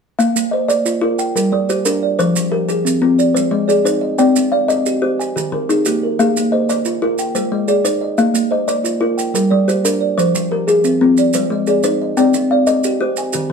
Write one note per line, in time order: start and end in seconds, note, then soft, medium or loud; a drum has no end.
0.19 0.52 A#3 medium
0.19 0.69 F5 medium
0.19 maracas medium
0.36 0.69 A#3 medium
0.36 maracas medium
0.51 1.03 C5 medium
0.51 1.02 D#5 medium
0.68 1.02 D5 medium
0.68 1.19 D5 medium
0.68 maracas medium
0.86 1.19 F4 medium
0.86 maracas medium
1.01 1.18 F4 medium
1.01 1.52 A#4 medium
1.19 1.52 G5 medium
1.19 maracas medium
1.35 1.69 G3 medium
1.35 1.84 A#4 medium
1.35 maracas medium
1.52 1.86 G3 medium
1.52 2.01 D5 medium
1.69 2.19 G4 medium
1.69 2.17 C5 medium
1.69 maracas medium
1.85 2.19 D4 medium
1.85 2.19 A#4 medium
1.85 maracas medium
2.03 2.52 D5 medium
2.19 2.52 F3 medium
2.19 2.52 C5 medium
2.19 2.69 C5 medium
2.19 maracas medium
2.36 2.69 F3 medium
2.36 maracas medium
2.51 3.02 G4 medium
2.51 3.02 A#4 medium
2.68 3.19 G#4 medium
2.68 3.02 G#4 medium
2.68 maracas medium
2.85 3.19 C4 medium
2.85 maracas medium
3.01 3.19 C4 medium
3.01 3.52 F4 medium
3.19 3.52 D5 medium
3.19 maracas medium
3.34 3.68 G#3 medium
3.34 3.84 C5 medium
3.34 maracas medium
3.51 3.85 G#3 medium
3.51 4.00 D#5 medium
3.68 4.19 G#4 medium
3.68 4.17 D5 medium
3.68 maracas soft
3.85 4.18 D#4 medium
3.85 4.19 C5 medium
3.85 maracas medium
4.01 4.52 D#5 medium
4.18 4.52 C4 medium
4.18 4.51 D5 medium
4.18 4.69 G5 medium
4.18 maracas medium
4.36 4.69 C4 medium
4.36 maracas medium
4.52 5.02 D5 medium
4.52 5.02 F5 medium
4.68 5.02 D#5 medium
4.68 5.19 D#5 medium
4.68 maracas medium
4.86 5.19 G4 medium
4.86 maracas medium
5.02 5.19 G4 medium
5.02 5.52 C5 medium
5.19 5.52 G#5 medium
5.19 maracas medium
5.36 5.69 D#3 medium
5.36 5.85 G4 medium
5.36 maracas medium
5.52 5.85 D#3 medium
5.52 6.02 A#4 medium
5.69 6.19 D#4 medium
5.69 6.19 G#4 medium
5.69 maracas medium
5.85 6.19 A#3 medium
5.85 6.19 G4 medium
5.85 maracas medium
6.03 6.53 A#4 medium
6.19 6.52 A#3 medium
6.19 6.53 G#4 medium
6.19 6.69 F5 medium
6.19 maracas medium
6.37 6.70 A#3 medium
6.37 maracas medium
6.52 7.02 C5 medium
6.52 7.02 D#5 medium
6.69 7.19 D5 medium
6.69 7.02 D5 medium
6.69 maracas medium
6.85 7.19 F4 medium
6.85 maracas medium
7.02 7.19 F4 medium
7.02 7.52 A#4 medium
7.18 7.52 G5 medium
7.18 maracas medium
7.35 7.68 G#3 medium
7.35 7.83 C5 medium
7.35 maracas medium
7.52 7.85 G#3 medium
7.52 8.00 D#5 medium
7.68 8.18 G#4 medium
7.68 8.18 D5 medium
7.68 maracas soft
7.84 8.18 D#4 medium
7.84 8.18 C5 medium
7.84 maracas medium
8.01 8.51 D#5 medium
8.18 8.51 A#3 medium
8.18 8.68 F5 medium
8.18 maracas soft
8.34 8.68 A#3 medium
8.34 maracas medium
8.51 9.01 C5 medium
8.51 9.02 D#5 medium
8.68 9.18 D5 medium
8.68 9.01 D5 medium
8.68 maracas medium
8.84 9.18 F4 medium
8.84 maracas medium
9.00 9.18 F4 medium
9.00 9.51 A#4 medium
9.18 9.51 G5 medium
9.18 maracas medium
9.34 9.68 G3 medium
9.34 9.84 A#4 medium
9.34 maracas medium
9.51 9.85 G3 medium
9.51 9.99 D5 medium
9.68 10.18 G4 medium
9.68 10.17 C5 medium
9.68 maracas medium
9.85 10.18 D4 medium
9.85 10.18 A#4 medium
9.85 maracas medium
10.01 10.51 D5 medium
10.18 10.51 F3 medium
10.18 10.68 C5 medium
10.18 10.51 C5 medium
10.18 maracas medium
10.35 10.68 F3 medium
10.35 maracas medium
10.51 11.01 G4 medium
10.51 11.01 A#4 medium
10.67 11.17 G#4 medium
10.67 11.01 G#4 medium
10.67 maracas medium
10.84 11.18 C4 medium
10.84 maracas medium
11.01 11.18 C4 medium
11.01 11.51 F4 medium
11.17 11.51 D5 medium
11.17 maracas medium
11.33 11.68 G#3 medium
11.33 11.83 C5 medium
11.33 maracas medium
11.50 11.84 G#3 medium
11.50 12.00 D#5 medium
11.67 12.17 G#4 medium
11.67 12.18 D5 medium
11.67 maracas medium
11.83 12.17 D#4 medium
11.83 12.17 C5 medium
11.83 maracas medium
12.01 12.51 D#5 medium
12.17 12.51 C4 medium
12.17 12.51 D5 medium
12.17 12.67 G5 medium
12.17 maracas medium
12.34 12.68 C4 medium
12.34 maracas medium
12.51 13.01 D5 medium
12.51 13.01 F5 medium
12.67 13.00 D#5 medium
12.67 13.18 D#5 medium
12.67 maracas medium
12.84 13.18 G4 medium
12.84 maracas medium
13.01 13.17 G4 medium
13.01 13.51 C5 medium
13.17 13.51 G#5 medium
13.17 maracas medium
13.33 13.52 D#3 medium
13.33 13.52 G4 medium
13.33 maracas medium